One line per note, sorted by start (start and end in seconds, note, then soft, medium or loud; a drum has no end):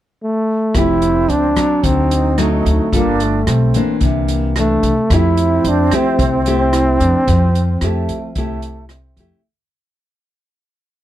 0.23 0.78 A3 medium
0.74 1.25 F1 medium
0.74 1.55 F3 medium
0.74 1.29 A3 soft
0.74 1.78 C4 loud
0.74 1.31 E4 loud
0.74 1.30 E4 medium
0.74 1.30 G4 medium
0.74 kick medium
0.74 cross-stick medium
0.74 closed hi-hat medium
1.02 closed hi-hat soft
1.28 1.54 C#2 medium
1.28 1.85 D4 loud
1.28 closed hi-hat soft
1.56 2.33 F#3 medium
1.56 2.34 C4 medium
1.56 kick soft
1.56 cross-stick medium
1.56 closed hi-hat soft
1.76 1.84 D4 medium
1.82 2.61 D2 medium
1.82 2.90 D3 medium
1.82 2.41 C4 medium
1.82 2.93 D#4 medium
1.82 kick medium
1.82 closed hi-hat medium
2.11 closed hi-hat soft
2.38 2.88 F#3 medium
2.38 2.97 A3 medium
2.38 2.88 C4 medium
2.38 2.88 D#4 medium
2.38 cross-stick medium
2.38 closed hi-hat soft
2.65 2.78 D2 medium
2.65 kick soft
2.65 closed hi-hat soft
2.92 3.43 G1 loud
2.92 3.75 G3 medium
2.92 3.24 A#3 medium
2.92 3.46 D4 loud
2.92 3.70 F4 medium
2.92 3.70 A4 medium
2.92 kick medium
2.92 closed hi-hat medium
3.20 4.03 A3 medium
3.20 closed hi-hat soft
3.46 3.72 B1 medium
3.46 3.97 C4 medium
3.46 cross-stick medium
3.46 closed hi-hat soft
3.74 4.52 E3 medium
3.74 4.52 A#3 medium
3.74 4.52 D4 medium
3.74 kick soft
3.74 closed hi-hat soft
4.01 4.79 C2 medium
4.01 5.08 C3 medium
4.01 4.79 A#3 medium
4.01 kick medium
4.01 closed hi-hat soft
4.28 closed hi-hat soft
4.56 4.92 E3 medium
4.56 5.16 A3 medium
4.56 4.92 D4 medium
4.56 cross-stick medium
4.56 closed hi-hat soft
4.83 4.95 C2 medium
4.83 kick soft
4.83 closed hi-hat soft
5.10 5.61 F2 medium
5.10 6.17 F3 medium
5.10 5.88 A3 medium
5.10 6.74 C4 loud
5.10 5.88 E4 medium
5.10 5.70 E4 loud
5.10 5.88 G4 medium
5.10 kick medium
5.10 cross-stick medium
5.10 closed hi-hat medium
5.37 closed hi-hat soft
5.64 5.90 F2 loud
5.64 closed hi-hat soft
5.69 5.97 D4 medium
5.91 6.42 A3 medium
5.91 6.42 E4 medium
5.91 6.42 G4 medium
5.91 kick soft
5.91 cross-stick medium
5.91 closed hi-hat soft
5.96 8.92 C4 loud
6.19 6.96 C2 loud
6.19 7.25 C3 medium
6.19 kick medium
6.19 closed hi-hat soft
6.46 7.50 A3 medium
6.46 7.51 E4 medium
6.46 7.51 G4 medium
6.46 closed hi-hat soft
6.73 7.02 E4 loud
6.73 cross-stick medium
6.73 closed hi-hat soft
7.00 7.13 F2 medium
7.00 7.27 D4 loud
7.00 kick soft
7.00 closed hi-hat soft
7.26 7.78 F2 medium
7.26 8.33 F3 medium
7.26 7.81 C4 loud
7.26 kick medium
7.26 closed hi-hat medium
7.55 closed hi-hat soft
7.81 8.07 F2 medium
7.81 8.32 A3 medium
7.81 8.17 A3 medium
7.81 8.17 E4 medium
7.81 8.17 G4 medium
7.81 cross-stick medium
7.81 closed hi-hat soft
8.09 kick soft
8.09 closed hi-hat soft
8.35 9.13 C2 medium
8.35 9.42 C3 medium
8.35 8.86 A3 medium
8.35 8.90 A3 medium
8.35 8.91 E4 medium
8.35 8.91 G4 medium
8.35 kick medium
8.35 closed hi-hat medium
8.62 closed hi-hat soft
8.89 9.40 C4 medium
8.89 cross-stick medium
8.89 closed hi-hat soft
9.16 9.29 F2 medium
9.16 9.40 A3 medium
9.16 9.41 E4 medium
9.16 9.41 G4 medium
9.16 kick soft
9.16 closed hi-hat soft